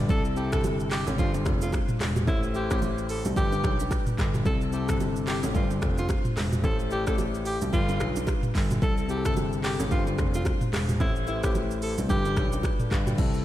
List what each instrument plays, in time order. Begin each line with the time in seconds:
Already playing: tine electric piano G3 D4 F4 B4 D5 F5 G5
0.00 tine electric piano A4
0.08 grand piano C2, tine electric piano C3 C4 E4 A4, alto saxophone A4, kick, low conga, shaker
0.25 shaker
0.35 tine electric piano C3 C4 E4 G4, alto saxophone G4, shaker
0.52 grand piano G1, alto saxophone A4, finger snap, kick, cross-stick, shaker
0.64 high bongo, low conga, shaker
0.80 shaker
0.91 alto saxophone G4, finger snap, cross-stick, clap, open hi-hat, shaker
1.07 grand piano A1, high bongo, low bongo, shaker
1.17 grand piano G1, tine electric piano G3 D4 F4 C5, alto saxophone F4, kick, low conga, shaker
1.34 low bongo, shaker
1.46 grand piano F1, finger snap, kick, cross-stick, shaker
1.62 alto saxophone F4, low bongo, shaker
1.72 finger snap, kick, cross-stick, high bongo, shaker
1.89 mid tom, shaker
2.00 grand piano E1, finger snap, cross-stick, clap, open hi-hat, shaker
2.16 mid tom, high bongo, shaker
2.26 grand piano A1, tine electric piano A3 E4 G4 C5, alto saxophone E4, kick, low conga, shaker
2.43 shaker
2.53 tine electric piano A3 E4 G4 C5, alto saxophone G4, shaker
2.71 grand piano A1, alto saxophone G4, finger snap, kick, cross-stick, shaker
2.82 high bongo, low conga, shaker
2.98 shaker
3.09 alto saxophone A4, open hi-hat, shaker
3.25 grand piano C2, high bongo, low bongo, shaker
3.35 grand piano G1, tine electric piano G3 D4 F4 B4, alto saxophone G4, kick, low conga, shaker
3.52 low bongo, shaker
3.64 grand piano B1, finger snap, kick, cross-stick, shaker
3.80 low bongo, shaker
3.91 finger snap, kick, cross-stick, high bongo, shaker
4.07 mid tom, shaker
4.19 grand piano G1, finger snap, kick, cross-stick, clap, mid tom, shaker
4.34 mid tom, high bongo, shaker
4.44 grand piano C2, tine electric piano C3 C4 E4 A4, alto saxophone A4, kick, low conga, shaker
4.61 shaker
4.72 tine electric piano C3 C4 E4 A4, alto saxophone G4, shaker
4.89 grand piano G1, alto saxophone A4, finger snap, kick, cross-stick, shaker
5.00 high bongo, low conga, shaker
5.16 shaker
5.27 alto saxophone G4, finger snap, cross-stick, clap, open hi-hat, shaker
5.43 grand piano A1, high bongo, low bongo, shaker
5.53 grand piano G1, tine electric piano G3 D4 F4 B4, alto saxophone F4, kick, low conga, shaker
5.62 tine electric piano C5
5.71 low bongo, shaker
5.82 grand piano F1, finger snap, kick, cross-stick, shaker
5.98 alto saxophone F4, low bongo, shaker
6.09 finger snap, kick, cross-stick, high bongo, shaker
6.25 mid tom, shaker
6.37 grand piano E1, finger snap, cross-stick, clap, open hi-hat, shaker
6.52 mid tom, high bongo, shaker
6.62 grand piano A1, tine electric piano A3 E4 G4 C5, alto saxophone A4, kick, low conga, shaker
6.79 shaker
6.90 tine electric piano A3 E4 G4 D5, alto saxophone G4, shaker
7.07 grand piano A1, alto saxophone A4, finger snap, kick, cross-stick, shaker
7.18 high bongo, low conga, shaker
7.34 shaker
7.45 alto saxophone G4, open hi-hat, shaker
7.61 grand piano C2, high bongo, low bongo, shaker
7.72 grand piano G1, tine electric piano G3 D4 F4 B4, alto saxophone F4, kick, low conga, shaker
7.89 low bongo, shaker
8.00 grand piano B1, finger snap, cross-stick, shaker
8.16 low bongo, shaker
8.27 finger snap, kick, cross-stick, high bongo, shaker
8.43 mid tom, shaker
8.55 grand piano G1, kick, clap, open hi-hat, shaker
8.71 mid tom, high bongo, shaker
8.81 grand piano C2, tine electric piano C3 C4 E4 A4, alto saxophone A4, kick, low conga, shaker
8.98 shaker
9.08 tine electric piano C3 C4 E4 G#4, alto saxophone G4, shaker
9.17 tine electric piano A4
9.25 grand piano G1, alto saxophone A4, finger snap, kick, cross-stick, shaker
9.37 high bongo, low conga, shaker
9.53 shaker
9.64 alto saxophone G4, finger snap, cross-stick, clap, open hi-hat, shaker
9.80 grand piano A1, high bongo, low bongo, shaker
9.90 grand piano G1, tine electric piano G3 D4 F4 B4, alto saxophone F4, kick, low conga, shaker
9.99 tine electric piano C5
10.07 low bongo, shaker
10.18 grand piano F1, finger snap, kick, cross-stick, shaker
10.34 alto saxophone F4, low bongo, shaker
10.45 finger snap, kick, cross-stick, high bongo, shaker
10.61 mid tom, shaker
10.73 grand piano E1, finger snap, cross-stick, clap, open hi-hat, shaker
10.89 mid tom, high bongo, shaker
10.99 grand piano A1, tine electric piano A3 E4 G4 C5, alto saxophone E4, kick, low conga, shaker
11.16 shaker
11.26 tine electric piano A3 E4 G4 B4, alto saxophone E4, low bongo, shaker
11.35 tine electric piano C5
11.43 grand piano A1, alto saxophone G4, finger snap, kick, cross-stick, shaker
11.55 high bongo, low conga, shaker
11.71 shaker
11.82 alto saxophone A4, open hi-hat, shaker
11.98 grand piano C2, high bongo, low bongo, shaker
12.08 grand piano G1, tine electric piano G3 D4 F4 B4, alto saxophone G4, kick, low conga, shaker
12.25 low bongo, shaker
12.36 grand piano B1, finger snap, kick, cross-stick, shaker
12.52 low bongo, shaker
12.63 finger snap, kick, cross-stick, high bongo, shaker
12.80 tine electric piano A4 D5, mid tom, shaker
12.91 grand piano G1, tine electric piano B4 F5, finger snap, kick, cross-stick, clap, mid tom, shaker
13.07 tine electric piano D5 G5, mid tom, high bongo, shaker
13.17 grand piano C2, tine electric piano C3 C4 E4 A4, kick, crash, low conga, shaker
13.34 shaker